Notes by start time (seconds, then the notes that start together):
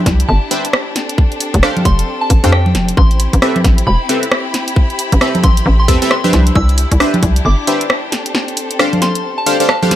Already playing: D4 E4 G4 B5
0.06 C2, kick, snare, open hi-hat
0.20 closed hi-hat
0.28 G1 A5
0.51 D4 G4 B4 C5 E5, open hi-hat
0.65 closed hi-hat
0.73 cross-stick
0.96 C4 A4, snare, open hi-hat
1.09 closed hi-hat
1.18 kick
1.32 closed hi-hat
1.40 open hi-hat
1.54 F1, kick, closed hi-hat
1.63 D4 G4 A4 C5 F5, cross-stick
1.77 closed hi-hat, high conga
1.85 F1 C6, kick, open hi-hat
1.99 closed hi-hat
2.21 A5
2.30 A1, kick, open hi-hat
2.44 F2 D4 G4 A4 C5 F5, closed hi-hat
2.52 G5, cross-stick
2.66 high conga
2.75 F1, snare, open hi-hat, high conga
2.88 closed hi-hat
2.97 A1 E4 G4 B5 C6, kick
3.11 closed hi-hat
3.20 open hi-hat
3.33 A1, kick, closed hi-hat
3.42 C4 G4 A4 B4 E5, cross-stick
3.56 closed hi-hat, high conga
3.64 A1, kick, snare, open hi-hat
3.78 closed hi-hat
3.87 E1 B5
4.09 C4 G4 A4 B4 E5, open hi-hat
4.23 closed hi-hat
4.32 cross-stick
4.54 snare, open hi-hat
4.68 closed hi-hat
4.76 kick
4.90 closed hi-hat
4.99 open hi-hat
5.12 A1, kick, closed hi-hat
5.21 C4 G4 A4 B4 E5, cross-stick
5.35 closed hi-hat, high conga
5.43 A1 C6, kick, open hi-hat
5.57 closed hi-hat
5.66 A1
5.80 C6
5.88 E2 C4 G4 A4 B4 E5, kick, open hi-hat
6.02 C4 G4 A4 B4 E5, closed hi-hat
6.11 C6, cross-stick
6.24 D4 G4 B4 C5 E5, high conga
6.33 C2 D4 E4 G4, snare, open hi-hat, high conga
6.47 closed hi-hat
6.55 C2 E6, kick
6.69 closed hi-hat
6.78 open hi-hat
6.91 C2, kick, closed hi-hat
7.00 D4 G4 B4 C5 E5, cross-stick
7.14 closed hi-hat, high conga
7.23 C2, kick, open hi-hat
7.36 closed hi-hat
7.45 G1 D6
7.67 D4 G4 B4 C5 E5, open hi-hat
7.81 closed hi-hat
7.90 cross-stick
8.12 C4 A4, snare, open hi-hat
8.26 closed hi-hat
8.35 snare
8.48 closed hi-hat
8.57 open hi-hat
8.71 closed hi-hat
8.79 D4 G4 A4 C5 F5, cross-stick
8.93 closed hi-hat, high conga
9.02 C6, snare, open hi-hat
9.15 closed hi-hat
9.38 A5
9.46 D4 G4 A4 C5 F5, open hi-hat
9.60 D4 G4 A4 C5 F5, closed hi-hat
9.69 A5, cross-stick
9.83 D4 G4 A4 C5 F5, high conga
9.91 snare, open hi-hat, high conga